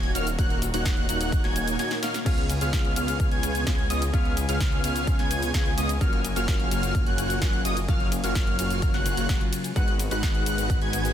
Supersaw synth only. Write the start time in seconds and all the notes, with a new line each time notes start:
Already playing: A#3 D#4 F#4 C#5 G#5
0.15 A#3 D#4 F#4 C#5 F5
0.39 A#3 D#4 F#4 C#5 F#5
0.74 A#3 D#4 F#4 C#5 F#5
1.09 A#3 D#4 F#4 C#5 F#5
1.44 A#3 D#4 F#4 C#5 G#5
1.79 A#3 D#4 F#4 C#5 G#5
2.03 A#3 D#4 F#4 C#5 F5
2.26 B3 F4 G#4 C#5 F5
2.61 B3 F4 G#4 C#5 F5
2.96 B3 F4 G#4 C#5 F5
3.31 B3 F4 G#4 C#5 G#5
3.67 B3 F4 C#5
3.90 B3 F4 G#4 C#5 D#5
4.14 B3 F4 G#4 C#5 F5
4.49 B3 F4 G#4 C#5 F5
4.84 B3 F4 G#4 C#5 F5
5.19 B3 F4 G#4 C#5 G#5
5.54 B3 F4 G#4 C#5 G#5
5.78 B3 F4 G#4 C#5 D#5
6.01 A#3 F4 F#4 C#5 F5
6.36 A#3 F4 F#4 C#5 F5
6.71 A#3 F4 F#4 C#5 F5
7.07 A#3 F4 F#4 C#5 F#5
7.42 A#3 F4 F#4 F#5
7.65 A#3 F4 F#4 C#5 D#5
7.89 A#3 F4 F#4 C#5 F5
8.24 A#3 F4 F#4 C#5 F5
8.59 A#3 F4 F#4 C#5 F5
8.94 A#3 F4 F#4 C#5 F#5
9.17 A#3 F4 F#4 C#5 F#5
9.29 F4 F#4 C#5
9.76 G#3 D#4 F#4 B4 F#5
10.11 G#3 D#4 F#4 B4 F#5
10.46 G#3 D#4 F#4 B4 F#5
10.82 G#3 D#4 F#4 B4 G#5